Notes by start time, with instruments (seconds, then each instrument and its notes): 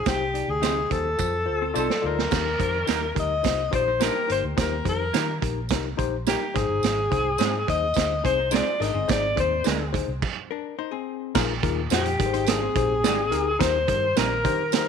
0.06 fingered electric bass C2, tine electric piano C3 D#4 G4 C5, alto saxophone G4, kick, snare, closed hi-hat, tambourine
0.34 tine electric piano D#4 G4 D5, closed hi-hat
0.48 fingered electric bass D2, alto saxophone G#4
0.62 clean electric guitar C4 D#4 G4 C5, tine electric piano D#4 G4 D#5, snare, closed hi-hat, tambourine
0.90 fingered electric bass D#2, tine electric piano D#4 G4 C5, alto saxophone A4, kick, closed hi-hat
1.18 fingered electric bass F2, tine electric piano F4 A4 C5, kick, tambourine
1.46 fingered electric bass D2, tine electric piano F4 A4 C5
1.62 hollow-body jazz guitar C4 A4
1.74 fingered electric bass C2, clean electric guitar C4 F4 A4 C5, hollow-body jazz guitar D#4 C5, tine electric piano F4 A4 D5, tambourine
1.79 alto saxophone A4
1.90 hollow-body jazz guitar F4 D5, snare
2.02 fingered electric bass D2, tine electric piano F4 A4 D5, hollow-body jazz guitar C5
2.06 hollow-body jazz guitar D#4, alto saxophone A#4
2.19 hollow-body jazz guitar C4 A4, snare
2.31 fingered electric bass D#2, tine electric piano D#3 D#4 G4 A#4, kick, snare, crash, tambourine
2.59 fingered electric bass F2, tine electric piano D#4 G4 C5, kick, closed hi-hat
2.86 fingered electric bass D#2, clean electric guitar A#3 D#4 G4 A#4, tine electric piano D#4 G4 A#4, snare, closed hi-hat, tambourine
3.15 fingered electric bass D2, tine electric piano D#4 G4 A#4, kick, closed hi-hat
3.20 alto saxophone D#5
3.43 fingered electric bass C2, tine electric piano D#4 G4 C5, kick, snare, closed hi-hat, tambourine
3.71 fingered electric bass A#1, tine electric piano D#4 G4 C5, hollow-body jazz guitar F4 D5, kick, closed hi-hat
3.75 alto saxophone C5
3.88 hollow-body jazz guitar D#4 C5
4.00 clean electric guitar A#3 D#4 G4 A#4, hollow-body jazz guitar D4 A#4, tine electric piano D#4 G4 C5, alto saxophone A#4, snare, closed hi-hat, tambourine
4.16 hollow-body jazz guitar A#3 G4
4.28 fingered electric bass G1, tine electric piano D#4 G4 C5, closed hi-hat
4.32 alto saxophone C5
4.44 fingered electric bass D2
4.57 fingered electric bass D#2, tine electric piano D#3 D#4 G4 C5, kick, snare, closed hi-hat, tambourine
4.61 alto saxophone A#4
4.85 fingered electric bass F2, tine electric piano D#4 G4 C5, alto saxophone A#4, kick, closed hi-hat
5.13 fingered electric bass D#3, clean electric guitar A#3 D#4 G4 A#4, tine electric piano D#4 G4 A#4, snare, closed hi-hat, tambourine
5.42 fingered electric bass A#1, tine electric piano D#4 G4 A#4, kick, closed hi-hat
5.69 fingered electric bass C2, tine electric piano D#4 G4 A#4, kick, snare, closed hi-hat, tambourine
5.97 fingered electric bass A#1, tine electric piano D#4 G4 C5, kick, closed hi-hat
6.27 clean electric guitar A#3 D#4 G4 A#4, tine electric piano D#4 G4 A#4, alto saxophone G4, snare, closed hi-hat, tambourine
6.54 fingered electric bass G#1, tine electric piano G#2 D#4 G#4 C5, alto saxophone G#4, kick, snare, closed hi-hat
6.69 fingered electric bass G1
6.83 fingered electric bass G#1, snare, closed hi-hat, tambourine
7.10 fingered electric bass C2, tine electric piano D#4 G#4 C5, kick, closed hi-hat
7.38 fingered electric bass G#2, clean electric guitar G#3 C4 D#4 G#4, tine electric piano D#4 G#4 C5, snare, closed hi-hat, tambourine
7.68 fingered electric bass D#2, tine electric piano D#4 G#4 C5, alto saxophone D#5, kick, closed hi-hat
7.94 fingered electric bass D2, tine electric piano D#4 G#4 C5, kick, snare, closed hi-hat, tambourine
8.23 fingered electric bass C2, hollow-body jazz guitar C4 G#4, tine electric piano D#4 G#4 C5, alto saxophone C5, kick, closed hi-hat
8.38 hollow-body jazz guitar D#4 C5
8.51 clean electric guitar G#3 C4 D#4 G#4, tine electric piano D#4 G#4 C5, hollow-body jazz guitar F4 D5, alto saxophone D5, snare, closed hi-hat, tambourine
8.80 fingered electric bass G#1, tine electric piano G#2 D#4 G#4 D#5, hollow-body jazz guitar D4 A#4, alto saxophone D#5, snare, closed hi-hat
8.94 fingered electric bass G1, hollow-body jazz guitar C4 G#4
9.08 fingered electric bass G#1, tine electric piano D#4 G#4 C5, alto saxophone D5, kick, snare, closed hi-hat, tambourine
9.36 fingered electric bass D#2, tine electric piano D#4 G#4 C5, kick, closed hi-hat
9.40 alto saxophone C5
9.64 fingered electric bass D2, clean electric guitar G#3 C4 D#4 G#4, tine electric piano D#4 G#4 D5, snare, closed hi-hat, tambourine
9.92 tine electric piano D#4 G#4 C5, kick, closed hi-hat
10.08 fingered electric bass C2
10.22 kick, crash
10.51 hollow-body jazz guitar D4 A#4
10.79 hollow-body jazz guitar D#4 C5
10.91 hollow-body jazz guitar C4 G#4
11.34 fingered electric bass A#1, tine electric piano A#2 D#4 F4 G#4 A#4, kick, snare, crash, tambourine
11.63 fingered electric bass D#2, tine electric piano D#4 F4 G#4 A#4, kick, closed hi-hat
11.90 fingered electric bass F2, clean electric guitar F3 A#3 D#4 G#4, tine electric piano D#4 F4 G#4 C5, alto saxophone G4, snare, closed hi-hat, tambourine
12.06 closed hi-hat
12.19 fingered electric bass G#1, tine electric piano G#2 D#4 G4 G#4 A#4, kick, closed hi-hat
12.26 tine electric piano C5
12.34 hollow-body jazz guitar D#4 C5, closed hi-hat
12.47 hollow-body jazz guitar D4 A#4, alto saxophone G#4, snare, closed hi-hat, tambourine
12.62 hollow-body jazz guitar C4 G#4
12.76 fingered electric bass A#1, tine electric piano D#4 G4 G#4 C5, kick, closed hi-hat
13.04 fingered electric bass G#1, clean electric guitar D#3 G#3 C4 G4, tine electric piano D#4 G4 G#4 D5, snare, closed hi-hat, tambourine
13.31 fingered electric bass D2, tine electric piano D#4 G4 G#4 A#4, closed hi-hat
13.59 fingered electric bass D#2, tine electric piano D#3 D#4 G4 A#4 C5, alto saxophone C5, kick, snare, closed hi-hat, tambourine
13.88 fingered electric bass G2, tine electric piano D#4 G4 A#4 C5, kick, closed hi-hat
14.16 fingered electric bass A#1, clean electric guitar G3 C4 D#4 A#4, tine electric piano D#4 G4 A#4 C5, alto saxophone A#4, snare, closed hi-hat, tambourine
14.44 fingered electric bass D#3, tine electric piano D#4 G4 A#4 C5, kick, closed hi-hat
14.72 tine electric piano D#4 G4 A#4 C5, alto saxophone A#4, snare, closed hi-hat, tambourine